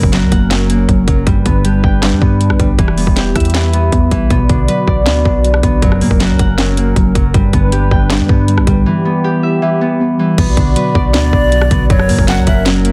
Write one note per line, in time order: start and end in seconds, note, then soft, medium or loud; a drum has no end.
0.00 0.24 F#1 loud
0.00 0.70 F#2 loud
0.00 0.89 C#3 medium
0.00 0.50 F#3 loud
0.00 1.25 F#3 medium
0.00 0.69 A#3 medium
0.00 1.25 C#4 medium
0.00 1.98 D4 medium
0.00 1.25 A#4 medium
0.00 0.65 D5 medium
0.00 kick loud
0.13 0.88 F#3 medium
0.13 1.33 F#4 loud
0.13 snare loud
0.13 clap medium
0.13 closed hi-hat medium
0.22 0.31 C#2 loud
0.32 0.87 F#1 loud
0.32 1.27 A#3 medium
0.32 1.33 F#5 medium
0.32 kick medium
0.32 closed hi-hat medium
0.51 1.07 F#3 medium
0.51 1.27 C#4 medium
0.51 snare loud
0.51 clap medium
0.51 closed hi-hat medium
0.70 1.52 A#3 medium
0.70 closed hi-hat medium
0.89 1.07 F#1 loud
0.89 1.27 F#3 medium
0.89 kick medium
0.89 closed hi-hat medium
1.08 1.26 F#1 loud
1.08 1.27 C#3 medium
1.08 1.32 F#3 medium
1.08 kick loud
1.08 closed hi-hat medium
1.27 1.45 G1 loud
1.27 2.22 G2 loud
1.27 2.02 G3 loud
1.27 2.77 G3 medium
1.27 2.77 D4 medium
1.27 2.77 B4 medium
1.27 kick loud
1.27 closed hi-hat medium
1.46 1.82 G1 loud
1.46 2.41 D3 medium
1.46 2.21 B3 medium
1.46 kick loud
1.46 closed hi-hat medium
1.65 2.39 G3 medium
1.65 3.16 G4 medium
1.65 closed hi-hat medium
1.84 2.14 G1 loud
1.84 2.79 B3 medium
1.84 3.39 G5 medium
1.84 kick medium
2.03 2.58 G3 medium
2.03 2.79 D4 medium
2.03 snare loud
2.03 clap medium
2.03 closed hi-hat medium
2.12 2.21 G2 loud
2.21 2.52 G2 loud
2.21 2.97 B3 medium
2.21 kick loud
2.41 2.79 G3 medium
2.41 closed hi-hat medium
2.50 2.59 A#1 loud
2.50 cross-stick medium
2.60 2.78 B1 loud
2.60 2.79 D3 medium
2.60 2.84 G3 medium
2.60 kick loud
2.60 closed hi-hat medium
2.78 3.06 E1 loud
2.78 4.29 E3 medium
2.78 3.53 E3 medium
2.78 3.74 E3 loud
2.78 5.79 B3 medium
2.78 4.29 G4 medium
2.78 kick loud
2.78 closed hi-hat medium
2.88 cross-stick medium
2.97 3.92 G3 medium
2.97 3.73 B3 medium
2.97 open hi-hat medium
3.07 3.34 E1 loud
3.07 kick medium
3.17 3.91 B3 medium
3.17 5.52 G4 medium
3.17 snare loud
3.17 clap medium
3.17 closed hi-hat medium
3.36 3.90 E2 loud
3.36 4.31 E4 medium
3.36 5.08 E5 medium
3.36 kick medium
3.36 cross-stick medium
3.36 closed hi-hat medium
3.40 closed hi-hat medium
3.45 closed hi-hat medium
3.50 closed hi-hat medium
3.54 4.10 E3 medium
3.54 4.31 E5 loud
3.54 snare loud
3.54 clap medium
3.54 closed hi-hat medium
3.73 4.30 B3 medium
3.73 closed hi-hat medium
3.92 4.11 E2 loud
3.92 4.31 B3 medium
3.92 kick medium
3.92 closed hi-hat medium
4.11 4.30 B1 loud
4.11 4.36 E3 medium
4.11 4.30 G3 medium
4.11 kick loud
4.11 closed hi-hat medium
4.30 4.49 B1 loud
4.30 5.25 B2 medium
4.30 5.06 B3 loud
4.30 5.81 F#4 medium
4.30 5.81 D5 medium
4.30 kick loud
4.30 closed hi-hat medium
4.49 4.68 B1 loud
4.49 5.44 D3 medium
4.49 5.25 D4 medium
4.49 kick loud
4.49 closed hi-hat medium
4.68 5.43 F#3 medium
4.68 6.07 B4 medium
4.68 closed hi-hat medium
4.88 5.08 B1 loud
4.88 5.83 B3 medium
4.88 6.72 D5 medium
4.88 kick medium
5.06 5.24 D2 loud
5.06 5.63 B3 medium
5.06 5.82 D4 loud
5.06 snare loud
5.06 clap medium
5.06 closed hi-hat medium
5.25 5.62 B1 loud
5.25 8.05 D4 medium
5.25 kick loud
5.44 5.83 F#3 medium
5.44 closed hi-hat medium
5.54 cross-stick medium
5.63 5.82 B1 loud
5.63 5.82 D3 medium
5.63 6.07 B3 medium
5.63 kick loud
5.63 closed hi-hat medium
5.82 6.03 F#1 loud
5.82 6.77 F#2 loud
5.82 7.33 F#3 medium
5.82 6.57 F#3 loud
5.82 7.33 C#4 medium
5.82 7.33 A#4 medium
5.82 kick loud
5.82 closed hi-hat medium
5.92 cross-stick medium
6.01 6.10 A#2 loud
6.01 6.96 C#3 medium
6.01 6.77 A#3 medium
6.01 open hi-hat medium
6.11 6.31 F#1 loud
6.11 kick medium
6.20 6.95 F#3 medium
6.20 7.40 F#4 loud
6.20 snare loud
6.20 clap medium
6.20 closed hi-hat medium
6.30 6.39 C#2 loud
6.39 6.94 F#1 loud
6.39 7.34 A#3 medium
6.39 7.40 F#5 medium
6.39 kick medium
6.39 closed hi-hat medium
6.58 7.14 F#3 loud
6.58 7.34 C#4 medium
6.58 snare loud
6.58 clap medium
6.58 closed hi-hat medium
6.77 7.60 A#3 medium
6.77 closed hi-hat medium
6.96 7.15 F#1 loud
6.96 7.34 F#3 medium
6.96 kick medium
6.96 closed hi-hat medium
7.15 7.34 F#1 loud
7.15 7.34 C#3 medium
7.15 7.39 F#3 medium
7.15 kick loud
7.15 closed hi-hat medium
7.34 7.53 G1 loud
7.34 8.29 G2 loud
7.34 8.09 G3 medium
7.34 8.85 G3 medium
7.34 8.85 D4 medium
7.34 8.85 B4 medium
7.34 kick loud
7.34 closed hi-hat medium
7.53 7.90 G1 loud
7.53 8.48 D3 medium
7.53 8.29 B3 medium
7.53 kick loud
7.53 closed hi-hat medium
7.72 8.47 G3 medium
7.72 9.24 G4 medium
7.72 closed hi-hat medium
7.91 8.21 G1 loud
7.91 8.86 B3 medium
7.91 9.47 G5 medium
7.91 kick medium
8.10 8.66 G3 medium
8.10 8.86 D4 loud
8.10 snare loud
8.10 clap medium
8.10 closed hi-hat medium
8.20 8.29 G2 loud
8.29 8.59 G2 loud
8.29 9.05 B3 medium
8.29 kick loud
8.48 8.86 G3 medium
8.48 closed hi-hat medium
8.58 8.67 A#1 loud
8.58 cross-stick medium
8.67 8.85 B1 loud
8.67 8.86 D3 medium
8.67 8.91 G3 medium
8.67 kick loud
8.67 closed hi-hat medium
8.86 9.61 E3 loud
8.86 10.37 E3 medium
8.86 9.81 E3 loud
8.86 10.37 B3 medium
8.86 10.37 G4 medium
9.05 10.00 G3 medium
9.05 9.81 B3 medium
9.24 9.99 B3 medium
9.24 11.60 G4 medium
9.43 10.38 E4 medium
9.43 11.15 E5 medium
9.62 10.18 E3 medium
9.62 10.38 E5 loud
9.81 10.38 B3 medium
10.00 10.38 B3 medium
10.19 10.43 E3 medium
10.19 10.38 G3 medium
10.38 10.56 B1 loud
10.38 11.33 B2 loud
10.38 11.88 B3 medium
10.38 11.14 B3 loud
10.38 11.88 F#4 medium
10.38 11.88 D5 medium
10.38 kick loud
10.38 closed hi-hat medium
10.38 crash loud
10.57 10.75 B1 loud
10.57 11.52 D3 medium
10.57 11.33 D4 medium
10.57 kick loud
10.57 closed hi-hat medium
10.76 11.51 F#3 medium
10.76 12.15 B4 medium
10.76 closed hi-hat medium
10.95 11.16 B1 loud
10.95 11.90 B3 medium
10.95 12.80 D5 medium
10.95 kick loud
11.14 11.32 D2 loud
11.14 11.70 B3 loud
11.14 11.90 D4 loud
11.14 11.86 D5 loud
11.14 snare loud
11.14 clap medium
11.14 closed hi-hat medium
11.33 11.69 B1 loud
11.33 12.92 D4 medium
11.33 kick loud
11.52 11.90 F#3 medium
11.52 closed hi-hat medium
11.62 cross-stick medium
11.71 11.89 B1 loud
11.71 11.90 D3 medium
11.71 12.15 B3 medium
11.71 kick loud
11.71 closed hi-hat medium
11.90 12.11 F#1 loud
11.90 12.85 F#2 loud
11.90 12.65 F#3 loud
11.90 12.92 F#3 medium
11.90 12.92 C#4 medium
11.90 12.92 A#4 medium
11.90 12.26 C#5 loud
11.90 kick loud
11.90 closed hi-hat medium
11.99 cross-stick medium
12.09 12.18 A#2 loud
12.09 12.92 C#3 medium
12.09 12.84 A#3 medium
12.09 open hi-hat medium
12.18 12.39 F#1 loud
12.18 kick loud
12.28 12.92 F#3 medium
12.28 12.92 F#4 loud
12.28 12.46 F#5 medium
12.28 snare loud
12.28 clap medium
12.28 closed hi-hat medium
12.38 12.47 C#2 loud
12.47 12.92 F#1 loud
12.47 12.92 A#3 medium
12.47 12.65 E5 medium
12.47 12.92 F#5 medium
12.47 kick medium
12.47 closed hi-hat medium
12.66 12.92 F#3 loud
12.66 12.92 C#4 medium
12.66 snare loud
12.66 clap medium
12.66 closed hi-hat medium
12.85 12.92 A#3 medium
12.85 closed hi-hat medium